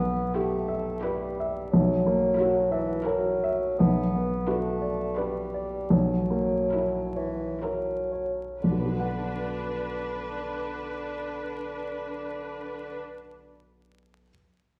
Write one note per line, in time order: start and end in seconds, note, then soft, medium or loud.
0.00 1.67 B1 soft
0.00 0.31 B3 medium
0.00 0.55 B3 soft
0.34 1.04 A3 soft
0.34 0.86 E4 soft
0.34 0.89 G4 soft
0.34 0.86 G4 soft
0.68 1.23 E5 soft
1.03 1.71 G3 soft
1.03 1.54 E4 soft
1.03 1.54 G4 soft
1.03 1.58 B4 soft
1.40 1.73 E5 soft
1.71 3.76 B1 soft
1.71 2.73 F#3 medium
2.06 2.59 A#3 soft
2.38 2.87 E4 soft
2.38 2.92 F#4 soft
2.38 2.87 A#4 soft
2.71 3.07 E3 soft
2.71 3.26 E5 soft
3.04 3.78 F#3 soft
3.04 3.60 E4 soft
3.04 3.60 A#4 soft
3.04 3.65 A#4 soft
3.44 3.80 E5 soft
3.78 5.89 B1 soft
3.78 4.48 B3 medium
4.15 4.69 B3 soft
4.47 5.20 A3 soft
4.47 4.99 D4 soft
4.47 5.03 F#4 soft
4.47 5.00 B4 soft
4.82 5.39 D5 soft
5.17 5.93 G3 soft
5.17 5.73 D4 soft
5.17 5.77 B4 soft
5.17 5.73 B4 soft
5.54 5.92 D5 soft
5.90 8.57 B1 soft
5.90 7.18 F#3 soft
6.30 6.98 A#3 soft
6.73 7.40 E4 soft
6.73 7.44 E4 soft
6.73 7.40 A#4 soft
7.15 7.63 E3 soft
7.15 7.91 C#5 soft
7.62 8.45 F#3 soft
7.62 8.39 E4 soft
7.62 8.39 A#4 soft
7.62 8.44 A#4 soft
8.12 8.62 C#5 soft
8.62 12.99 B1 soft
8.62 12.96 D3 soft
8.62 12.97 D4 soft
8.62 12.97 B4 soft
8.71 13.06 B2 soft
8.78 13.12 B3 soft
8.85 13.20 F#4 soft
8.92 13.26 B4 soft
9.00 13.34 F#5 soft